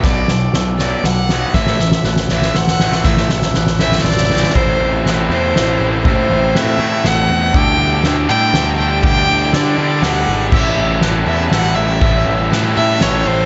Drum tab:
CC |------------------------|------------------------|------------------------|------------------------|
RD |x-------x-------x-------|------------------------|------------------------|x---x---x-------x-------|
SD |o---o---o---o---o---o---|o-o-o-o-o-o-o-o-o-o-o-o-|o-o-o-o-o-o-o-oooooooooo|--------o-------o-------|
BD |o-----------------------|o-----------------------|o-----------------------|o-----------------------|

CC |------------------------|------------------------|------------------------|x-----------------------|
RD |x---x---x-------x-------|x---x---x-------x-------|x---x---x-------x-------|----x---x-------x-------|
SD |--------o-------o-------|--------o-------o-------|--------o-------o-------|--------o-------o-------|
BD |o-----------------------|o-----------------------|o-----------------------|o-----------------------|

CC |------------------------|
RD |x---x---x-------x-------|
SD |--------o-------o-------|
BD |o-----------------------|